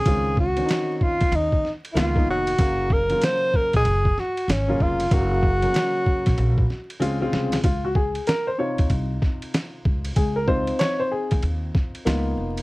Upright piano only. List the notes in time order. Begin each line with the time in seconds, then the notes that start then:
0.05 D#3 C4 C#4 F4
0.57 D#3 C4 C#4 D4
0.65 D#4
1.95 D#3 A#3 B3 F4
2.15 D#3 A#3 B3 D#4
2.58 C#3 F#3 A#3 F5
3.09 C#3 F#3 A#3 F4
4.68 C#3 F#3 A#3 F4
5.11 C#3 F#3 A#3 F5
5.62 C#3 F#3 A#3 C#4
7.00 C#3 G#3 C4 F4
7.20 C#3 G#3 C4 F4
7.64 F4
7.85 F#4
7.96 G#4
8.27 A#4
8.47 C5
8.58 C3 D#4 F4 C#5
10.16 G#4
10.36 A#4
10.47 C4 D#4 F4 C5
10.79 C#5
11.00 C5
11.12 G#4
12.05 A#3 B3 D#4 F4